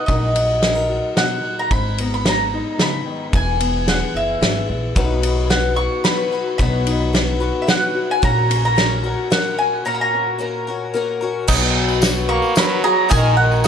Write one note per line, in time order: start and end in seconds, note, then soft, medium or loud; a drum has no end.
0.06 0.98 A#1 medium
0.06 1.16 A#2 medium
0.06 1.71 F#3 medium
0.06 0.35 D#4 medium
0.06 0.88 F#4 medium
0.06 1.19 D#5 medium
0.06 kick medium
0.06 ride medium
0.11 0.63 A#4 medium
0.36 1.68 D#4 medium
0.36 ride medium
0.63 0.75 G#4 medium
0.63 snare medium
0.63 ride medium
0.75 1.70 A#4 soft
0.90 1.68 F#4 medium
1.16 1.43 B2 medium
1.16 1.59 F#5 medium
1.16 snare medium
1.16 ride medium
1.43 1.70 A#2 medium
1.59 1.71 A#5 medium
1.71 2.61 G#1 loud
1.71 3.34 G#2 medium
1.71 2.13 B5 medium
1.71 kick loud
1.71 ride medium
1.98 3.60 B3 medium
1.98 ride medium
2.14 2.27 B5 medium
2.26 3.88 B4 medium
2.26 2.81 A#5 medium
2.26 snare medium
2.26 ride medium
2.53 3.34 D#4 medium
2.78 3.05 C#3 medium
2.78 snare medium
2.78 ride soft
2.82 3.35 B5 medium
3.05 3.32 D#3 medium
3.32 4.01 E1 medium
3.32 4.93 E3 medium
3.32 3.89 G#5 medium
3.32 kick loud
3.32 ride medium
3.60 4.96 B3 medium
3.60 ride medium
3.88 4.40 G#4 medium
3.88 4.14 F#5 medium
3.88 snare medium
3.88 ride medium
4.14 4.39 F#1 medium
4.14 4.67 E4 medium
4.14 4.67 E5 medium
4.41 4.66 G#1 medium
4.41 4.96 G#4 medium
4.41 snare medium
4.41 ride medium
4.69 4.94 A#1 medium
4.69 4.93 E4 medium
4.95 5.86 B1 medium
4.95 6.56 B2 medium
4.95 5.51 B2 medium
4.95 5.51 D#3 medium
4.95 8.46 F#3 medium
4.95 5.49 F#3 medium
4.95 5.49 B3 medium
4.95 5.22 D#4 medium
4.95 5.76 F#4 medium
4.95 5.51 F#4 medium
4.95 5.52 B4 medium
4.95 5.50 B4 medium
4.95 kick loud
4.95 ride medium
5.23 6.56 D#4 medium
5.23 ride medium
5.50 6.04 F#3 medium
5.50 6.05 B3 medium
5.50 6.06 F#4 medium
5.50 6.03 B4 medium
5.50 6.06 B4 medium
5.50 5.76 F#5 medium
5.50 snare medium
5.50 ride medium
5.76 6.31 F#4 medium
5.76 6.04 C#6 medium
6.04 6.32 F#3 medium
6.04 6.33 B3 medium
6.04 6.32 F#4 medium
6.04 6.56 B4 medium
6.04 6.31 B4 medium
6.04 6.55 B5 medium
6.04 snare medium
6.04 ride medium
6.31 6.59 F#3 soft
6.31 6.59 B3 soft
6.31 7.40 F#4 medium
6.31 6.60 F#4 soft
6.31 6.60 B4 soft
6.58 7.49 B1 loud
6.58 8.19 B2 medium
6.58 7.14 B2 medium
6.58 7.14 D#3 medium
6.58 7.13 F#3 medium
6.58 7.13 B3 medium
6.58 7.15 F#4 medium
6.58 7.15 B4 medium
6.58 7.09 B5 medium
6.58 kick medium
6.58 ride soft
6.86 8.19 D#4 medium
6.86 ride medium
7.13 7.41 F#3 medium
7.13 7.41 B3 medium
7.13 7.40 F#4 medium
7.13 7.66 B4 medium
7.13 7.39 B4 medium
7.13 snare medium
7.13 ride medium
7.40 7.66 F#3 soft
7.40 7.67 B3 soft
7.40 7.94 F#4 medium
7.40 7.68 F#4 soft
7.40 7.68 B4 medium
7.62 7.69 E5 medium
7.67 8.21 F#3 medium
7.67 8.23 B3 medium
7.67 8.23 F#4 medium
7.67 8.19 B4 medium
7.67 8.23 B4 medium
7.67 8.11 F#5 medium
7.67 snare medium
7.67 ride medium
7.95 9.04 F#4 medium
8.11 8.24 G#5 medium
8.22 9.13 A#1 loud
8.22 9.82 A#2 medium
8.22 8.75 A#3 medium
8.22 8.76 C#4 medium
8.22 8.78 F#4 medium
8.22 8.78 A#4 medium
8.22 8.64 A#5 loud
8.22 kick medium
8.22 ride medium
8.50 9.82 C#4 medium
8.50 ride medium
8.65 9.31 A#5 medium
8.76 9.04 A#3 medium
8.76 9.04 C#4 medium
8.76 9.03 F#4 medium
8.76 9.31 A#4 medium
8.76 9.02 A#4 medium
8.76 snare medium
8.76 ride medium
9.04 9.30 C#4 soft
9.04 9.31 F#4 soft
9.04 9.59 F#4 medium
9.04 9.31 A#4 medium
9.30 9.84 A#3 medium
9.30 9.85 C#4 medium
9.30 9.86 F#4 medium
9.30 9.83 A#4 medium
9.30 9.86 A#4 medium
9.30 9.58 F#5 medium
9.30 snare medium
9.30 ride medium
9.59 10.67 F#4 medium
9.59 9.84 G#5 medium
9.85 11.45 A#2 medium
9.85 10.37 A#3 medium
9.85 10.38 C#4 medium
9.85 10.39 F#4 medium
9.85 10.40 A#4 medium
9.85 9.92 A#5 medium
9.95 10.01 B5 medium
10.01 10.91 A#5 medium
10.14 11.46 C#4 medium
10.38 10.66 A#3 medium
10.38 10.67 C#4 medium
10.38 10.67 F#4 medium
10.38 10.93 A#4 medium
10.38 10.66 A#4 medium
10.67 10.94 C#4 soft
10.67 11.21 F#4 medium
10.67 10.95 F#4 soft
10.67 10.94 A#4 medium
10.94 11.21 A#3 medium
10.94 11.22 C#4 medium
10.94 11.21 F#4 medium
10.94 11.45 A#4 medium
10.94 11.20 A#4 medium
11.21 11.49 C#4 soft
11.21 11.46 F#4 medium
11.21 11.48 F#4 medium
11.21 11.48 A#4 medium
11.48 12.38 B1 loud
11.48 12.02 B2 loud
11.48 12.03 D#3 medium
11.48 12.01 F#3 loud
11.48 12.02 B3 loud
11.48 12.02 D#4 loud
11.48 12.03 F#4 loud
11.48 12.03 B4 loud
11.48 kick loud
11.48 crash loud
11.48 tambourine loud
11.88 tambourine soft
12.01 12.54 F#3 medium
12.01 12.55 B3 medium
12.01 12.56 F#4 medium
12.01 12.56 B4 medium
12.01 snare medium
12.01 ride medium
12.01 tambourine loud
12.29 12.55 A#3 medium
12.29 12.55 C#6 loud
12.42 tambourine soft
12.55 13.09 F#3 medium
12.55 12.83 F#3 loud
12.55 13.09 B3 medium
12.55 13.09 F#4 medium
12.55 12.83 A#4 medium
12.55 13.10 B4 medium
12.55 12.83 B5 loud
12.55 snare medium
12.55 ride medium
12.55 tambourine loud
12.84 13.11 F#3 medium
12.84 13.11 G#4 medium
12.84 13.10 A#5 loud
13.09 13.68 A#1 loud
13.09 13.64 A#2 medium
13.09 13.64 D#3 medium
13.09 13.37 D#3 medium
13.09 13.64 A#3 medium
13.09 13.64 D#4 loud
13.09 13.65 D#4 medium
13.09 13.64 F#4 medium
13.09 13.66 A#4 loud
13.09 13.36 G#5 loud
13.09 kick loud
13.09 ride medium
13.09 tambourine medium
13.37 13.64 D#3 medium
13.37 13.65 F#5 medium
13.52 tambourine soft
13.64 13.68 A#3 medium
13.64 13.68 F#4 medium
13.64 tambourine medium